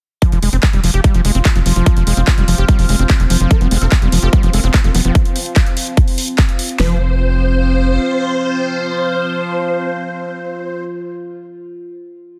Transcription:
0.22 acid bass F3, synth drone F3 F4, ambient pad C4, kick, closed hi-hat
0.32 analog synth bass F1, acid bass F3, closed hi-hat
0.43 analog synth bass F1, acid bass G#3, ambient pad F4, open hi-hat
0.53 analog synth bass F1, acid bass C4, closed hi-hat
0.63 kick, clap
0.73 analog synth bass F1, acid bass G3, closed hi-hat
0.78 ambient pad C5
0.84 analog synth bass F1, acid bass F3, open hi-hat
0.94 analog synth bass F1, acid bass G4, closed hi-hat
1.04 acid bass G3, kick, closed hi-hat
1.14 analog synth bass F1, acid bass F3, closed hi-hat
1.19 ambient pad F5
1.25 analog synth bass F1, acid bass G#3, open hi-hat
1.35 analog synth bass F1, acid bass C4, closed hi-hat
1.45 kick, clap, closed hi-hat
1.56 analog synth bass F1, acid bass F3, closed hi-hat
1.66 analog synth bass F1, acid bass F3, open hi-hat
1.76 analog synth bass F1, acid bass F3, closed hi-hat
1.86 acid bass F3, kick, closed hi-hat
1.97 analog synth bass F1, acid bass F3, closed hi-hat
2.07 analog synth bass F1, acid bass G#3, open hi-hat
2.17 analog synth bass F1, acid bass C4, closed hi-hat
2.27 kick, clap
2.38 analog synth bass F1, acid bass G3, closed hi-hat
2.48 analog synth bass F1, acid bass F3, open hi-hat
2.58 analog synth bass F1, acid bass G4, closed hi-hat
2.69 acid bass G3, kick, closed hi-hat
2.79 analog synth bass F1, acid bass F3, open hi-hat
2.89 analog synth bass F1, acid bass G#3, open hi-hat
2.99 analog synth bass F1, acid bass C4, closed hi-hat
3.10 kick, clap, closed hi-hat
3.20 analog synth bass F1, acid bass F3, closed hi-hat
3.30 analog synth bass F1, acid bass F3, open hi-hat
3.40 analog synth bass F1, acid bass F3, closed hi-hat
3.51 digital synth lead A#4, kick, closed hi-hat
3.61 analog synth bass F1, acid bass F3, digital synth lead C4, closed hi-hat
3.71 analog synth bass F1, acid bass G#3, digital synth lead C4, open hi-hat
3.82 analog synth bass F1, acid bass C4, digital synth lead A#4, closed hi-hat
3.92 digital synth lead C4, kick, clap
4.02 analog synth bass F1, acid bass G3, digital synth lead C4, closed hi-hat
4.12 analog synth bass F1, acid bass F3, digital synth lead C4, open hi-hat
4.23 analog synth bass F1, acid bass G4, digital synth lead A#4, closed hi-hat
4.33 acid bass G3, digital synth lead C4, kick, closed hi-hat
4.43 analog synth bass F1, acid bass F3, digital synth lead C4, closed hi-hat
4.53 analog synth bass F1, acid bass G#3, digital synth lead A#4, open hi-hat
4.64 analog synth bass F1, acid bass C4, digital synth lead C4, closed hi-hat
4.74 digital synth lead C4, kick, clap, closed hi-hat
4.84 analog synth bass F1, acid bass F3, digital synth lead A#4, closed hi-hat
4.95 analog synth bass F1, acid bass F3, digital synth lead C4, open hi-hat
5.05 analog synth bass F1, acid bass F3, digital synth lead C4, closed hi-hat
5.15 kick, closed hi-hat
5.25 closed hi-hat
5.36 open hi-hat
5.46 closed hi-hat
5.56 kick, clap, closed hi-hat
5.66 closed hi-hat
5.77 open hi-hat
5.87 closed hi-hat
5.97 kick, closed hi-hat
6.08 open hi-hat
6.18 open hi-hat
6.28 closed hi-hat
6.38 kick, clap, closed hi-hat
6.49 closed hi-hat
6.59 open hi-hat
6.69 closed hi-hat
6.79 analog synth bass F1, acid bass F3, synth drone F3 F4, ambient pad C4, digital synth lead C5, snare
6.86 ambient pad F4
6.92 ambient pad C5
6.98 ambient pad F5

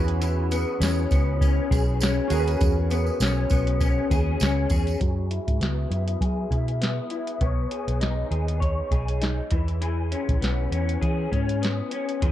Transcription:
Already playing: fingered electric bass E2, clean electric guitar E3 B3 G#4 C#5, synth keys C#4 F#4 G#4 B4 B5
0.08 closed hi-hat
0.21 clean electric guitar E3, closed hi-hat, tambourine
0.51 clean electric guitar B3, closed hi-hat, tambourine
0.80 fingered electric bass E2, clean electric guitar C#4, snare, closed hi-hat, tambourine
1.11 fingered electric bass C#2, clean electric guitar B3, kick, closed hi-hat, tambourine
1.41 clean electric guitar C#4, kick, closed hi-hat, tambourine
1.71 fingered electric bass B1, clean electric guitar G#4, kick, closed hi-hat, tambourine
2.01 clean electric guitar C#4, snare, closed hi-hat, tambourine
2.28 fingered electric bass D#2, synth keys C#4 F#4 G#4, clean electric guitar G#4, closed hi-hat, tambourine
2.33 synth keys A#4
2.39 synth keys B4
2.47 closed hi-hat, tambourine
2.61 fingered electric bass E2, kick, closed hi-hat, tambourine
2.90 clean electric guitar B3, closed hi-hat, tambourine
3.06 tambourine
3.20 fingered electric bass B1, clean electric guitar C#4, snare, closed hi-hat, tambourine
3.50 fingered electric bass B1, clean electric guitar B3, kick, closed hi-hat, tambourine
3.67 closed hi-hat
3.80 clean electric guitar C#4, kick, closed hi-hat, tambourine
4.10 fingered electric bass D#2, clean electric guitar G#4, kick, closed hi-hat, tambourine
4.40 fingered electric bass C#2, clean electric guitar C#4, snare, closed hi-hat, tambourine
4.70 fingered electric bass E2, clean electric guitar G#4, kick, closed hi-hat, tambourine
4.87 closed hi-hat, tambourine
5.01 fingered electric bass F#2, clean electric guitar F#3 G#4, kick, closed hi-hat
5.31 clean electric guitar E4, closed hi-hat
5.48 fingered electric bass G#2, kick, closed hi-hat
5.60 fingered electric bass C#2, clean electric guitar B3, snare, closed hi-hat
5.90 fingered electric bass F#2, clean electric guitar E4, closed hi-hat
6.08 closed hi-hat
6.21 fingered electric bass F#3, clean electric guitar G#4, kick, closed hi-hat
6.51 fingered electric bass B2, clean electric guitar E4, kick, closed hi-hat
6.68 closed hi-hat
6.81 clean electric guitar B3, snare, closed hi-hat
7.10 clean electric guitar E4, closed hi-hat
7.27 closed hi-hat
7.41 fingered electric bass B1, clean electric guitar B3 C#5, kick, closed hi-hat
7.71 clean electric guitar G#4, closed hi-hat
7.88 fingered electric bass B1, closed hi-hat
8.01 clean electric guitar D#4, snare, closed hi-hat
8.31 fingered electric bass D#2, clean electric guitar G#4, closed hi-hat
8.48 closed hi-hat
8.60 clean electric guitar C#5, kick, closed hi-hat
8.91 fingered electric bass B1, clean electric guitar G#4, kick, closed hi-hat
9.08 closed hi-hat
9.21 clean electric guitar D#4, snare, closed hi-hat
9.51 fingered electric bass E2, clean electric guitar E3, kick, closed hi-hat
9.68 closed hi-hat
9.81 clean electric guitar E3 G#4, closed hi-hat
10.12 clean electric guitar C#4, closed hi-hat
10.29 fingered electric bass A#1, kick, closed hi-hat
10.41 fingered electric bass B1, clean electric guitar B3, snare, closed hi-hat
10.71 fingered electric bass E2, clean electric guitar C#4, closed hi-hat
10.89 closed hi-hat
11.01 fingered electric bass E3, clean electric guitar G#4, kick, closed hi-hat
11.32 fingered electric bass G#2, clean electric guitar C#4, kick, closed hi-hat
11.49 closed hi-hat
11.62 clean electric guitar B3, snare, closed hi-hat
11.91 clean electric guitar C#4, closed hi-hat
12.09 closed hi-hat
12.22 fingered electric bass E2, clean electric guitar E3 G#4, kick, closed hi-hat

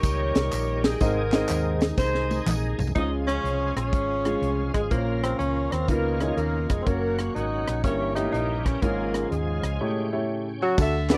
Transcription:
Already playing: tonewheel organ A#2 D#3 G3 D#4 G4, saxophone section G4 A#4 C#5
0.03 fingered electric bass C#2, kick, closed hi-hat, tambourine
0.35 fingered electric bass C2, snare, closed hi-hat, tambourine
0.52 fingered electric bass A#1, clap, closed hi-hat, tambourine
0.84 saxophone section G#4, snare, closed hi-hat, tambourine
1.00 fingered electric bass G#1, grand piano G#2 C4 D#4 G#4 D#5, tonewheel organ C3 G#3 G#4, saxophone section D#4 A#4, kick, closed hi-hat, tambourine
1.32 grand piano C4 D#4 G#4 D#5, snare, clap, closed hi-hat, tambourine
1.49 fingered electric bass D#2, clap, closed hi-hat, tambourine
1.81 snare, closed hi-hat, tambourine
1.98 fingered electric bass C2, saxophone section D#4 G#4 C5, kick, snare, tambourine
2.15 snare
2.31 high tom, tambourine
2.46 fingered electric bass A#1, clap, mid tom, tambourine
2.79 fingered electric bass C2, floor tom, tambourine
2.87 floor tom
2.95 fingered electric bass C#2, tonewheel organ C#3 F3 G#3 F4 G#4, grand piano C#3 G#3 C#4 F4 C5, tenor saxophone D#4, saxophone section G#4 D#5, kick, closed hi-hat
3.02 grand piano C#5
3.27 tenor saxophone C#4, saxophone section F4 G#4 C#5, cross-stick, closed hi-hat
3.44 fingered electric bass C2, closed hi-hat
3.76 fingered electric bass A#1, tenor saxophone C#4, saxophone section F4 G#4 C#5, cross-stick, closed hi-hat
3.93 fingered electric bass G#1, kick, closed hi-hat
4.25 grand piano G#3 C#4 F4 G#4, cross-stick, closed hi-hat
4.42 fingered electric bass C2, closed hi-hat
4.74 fingered electric bass G#1, tenor saxophone G#3, saxophone section G#4, kick, cross-stick, closed hi-hat
4.91 fingered electric bass A#1, grand piano A#2 A#3 C#4 F4 C5, tonewheel organ F3 A#3 A#4, tenor saxophone A#3, saxophone section C#4 F4 A#4, kick, closed hi-hat
4.98 grand piano C#5
5.23 tenor saxophone C4, cross-stick, closed hi-hat
5.39 fingered electric bass C#2, tenor saxophone C#4, saxophone section F4 A#4 C#5, closed hi-hat
5.72 fingered electric bass D#2, tenor saxophone C4, cross-stick, closed hi-hat
5.88 fingered electric bass C#2, tonewheel organ B2 D#3 A#3 C#4, grand piano C#3 A#3 D#4 F4 B4, tenor saxophone A#3, saxophone section D#4 F4 A#4, kick, closed hi-hat
6.20 tenor saxophone G#3, grand piano A#3 D#4 E4 C#5, saxophone section G#4, cross-stick, closed hi-hat
6.27 grand piano F4
6.37 fingered electric bass D#2, tenor saxophone A#3, saxophone section A#4, closed hi-hat
6.69 fingered electric bass F1, tenor saxophone G#3, saxophone section G#4, kick, cross-stick, closed hi-hat
6.82 tonewheel organ F#3, tenor saxophone A#3 C4
6.86 fingered electric bass F#1, tonewheel organ A#2 C#3 F#4, grand piano A#3 C#4 F#4 C#5, saxophone section C#4 F#4 A#4, kick, closed hi-hat
7.18 saxophone section C#5, cross-stick, closed hi-hat
7.35 fingered electric bass G#1, tenor saxophone D#4, saxophone section F#4 A#4 D#5, closed hi-hat
7.68 fingered electric bass A#1, cross-stick, closed hi-hat
7.84 fingered electric bass G1, grand piano G2 A#3 E4 G4 C#5, tonewheel organ E3 G3 A#3 G4, tenor saxophone C#4, saxophone section E4 A#4 C#5, kick, closed hi-hat
8.15 grand piano A3 E4 G4 C#5, tenor saxophone D#4, saxophone section A#4 D#5, cross-stick, closed hi-hat
8.22 grand piano A#3
8.32 fingered electric bass A#1, tenor saxophone D#4, closed hi-hat
8.65 tenor saxophone C#4, saxophone section C#5, kick, cross-stick, closed hi-hat
8.82 fingered electric bass G#1, grand piano G#2 G#3 C#4 F4 C#5, tonewheel organ C#3 F3 G#3 F4 G#4, tenor saxophone A#3, saxophone section C#4 F4 A#4, kick, closed hi-hat
9.14 cross-stick, closed hi-hat
9.31 fingered electric bass D#2, tenor saxophone G#3, saxophone section C#4 F4 G#4, closed hi-hat
9.63 fingered electric bass C#2, cross-stick, closed hi-hat
9.79 grand piano A2 A3 E4 G4 C#5, tonewheel organ C#3 C#4 G5
10.12 grand piano A3 E4 G4 C#5
10.62 tenor saxophone F#3, saxophone section F#4
10.78 fingered electric bass D2, grand piano D3 D4 F#4 A4, saxophone section A4 E5, kick, crash, tambourine
11.10 grand piano D4 F#4 B4, saxophone section F#4 A4 D5, snare, clap, ride, tambourine

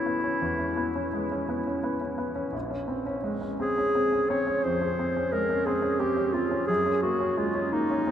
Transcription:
Already playing: grand piano A1 G#3 B3 C#4, clarinet E4
0.06 grand piano B3
0.24 grand piano C#4
0.42 grand piano E2
0.59 grand piano C#4
0.77 grand piano B3
0.95 grand piano C#4
1.13 grand piano G#3
1.32 grand piano C#4
1.49 grand piano B3
1.67 grand piano C#4
1.83 grand piano B3
2.01 grand piano C#4
2.18 grand piano B3
2.35 grand piano C#4
2.52 grand piano A#1
2.70 grand piano C#4
2.88 grand piano C4
3.06 grand piano C#4
3.24 grand piano G#3
3.42 grand piano C#4
3.60 grand piano C4, clarinet G#4
3.78 grand piano C#4
3.95 grand piano C4
4.12 grand piano C#4
4.29 grand piano C4, clarinet C#5
4.47 grand piano C#4
4.64 grand piano F2, clarinet C5
4.82 grand piano C#4
4.99 grand piano C4
5.17 grand piano C#4
5.32 grand piano G#3, clarinet A#4
5.50 grand piano C#4
5.66 grand piano C4, clarinet G#4
5.82 grand piano C#4
5.99 grand piano C4, clarinet G4
6.17 grand piano C#4
6.33 grand piano C4, clarinet F4
6.51 grand piano C#4
6.67 grand piano F#2, clarinet G#4
6.86 grand piano C#4
7.02 grand piano A#3, clarinet F#4
7.20 grand piano C#4
7.37 grand piano G#3, clarinet F4
7.55 grand piano C#4
7.73 grand piano A#3, clarinet D#4
7.91 grand piano C#4
8.07 grand piano C4

